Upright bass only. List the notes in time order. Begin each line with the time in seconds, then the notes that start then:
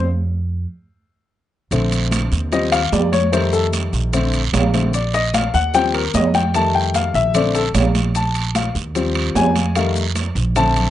Already playing: F2
1.71 A#1
2.32 D#2
2.92 F2
3.93 A#1
4.53 A#1
5.54 D#2
6.14 F2
7.14 A#1
7.74 A#1
8.75 D#2
9.35 F2
10.35 A#1